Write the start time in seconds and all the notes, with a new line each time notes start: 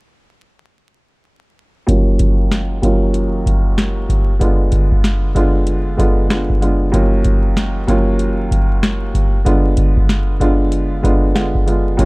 1.87 D#2 F#3 A#3 C#4 F4, kick, closed hi-hat
2.19 kick, closed hi-hat
2.52 snare, closed hi-hat
2.82 D#2 F#3 A#3 C#4 F4, kick, closed hi-hat
3.14 closed hi-hat
3.46 kick, closed hi-hat
3.78 snare, closed hi-hat
4.09 kick, closed hi-hat
4.39 D3 G#3 B3 D4 F4, kick, closed hi-hat
4.72 kick, closed hi-hat
4.92 kick
5.04 snare, closed hi-hat
5.34 D3 G#3 B3 D4 F4, kick, closed hi-hat
5.67 closed hi-hat
5.97 D3 G#3 B3 D4 F4, kick, closed hi-hat
6.29 D3 G#3 B3 D4 F4, snare, closed hi-hat
6.50 kick
6.61 D3 G#3 B3 D4 F4, closed hi-hat
6.92 D#2 F#3 A#3 C#4 F4, kick, closed hi-hat
7.24 kick, closed hi-hat
7.57 snare, closed hi-hat
7.87 D#2 F#3 A#3 C#4 F4, kick, closed hi-hat
8.19 closed hi-hat
8.51 kick, closed hi-hat
8.83 snare, closed hi-hat
9.14 kick, closed hi-hat
9.45 D3 G#3 B3 D4 F4, kick, closed hi-hat
9.77 kick, closed hi-hat
9.97 kick
10.09 snare, closed hi-hat
10.40 D3 G#3 B3 D4 F4, kick, closed hi-hat
10.72 closed hi-hat
11.02 D3 G#3 B3 D4 F4, kick, closed hi-hat
11.34 D3 G#3 B3 D4 F4, snare, closed hi-hat
11.55 kick
11.66 D3 G#3 B3 D4 F4, closed hi-hat
11.97 D#2 F#3 A#3 C#4 F4, kick, closed hi-hat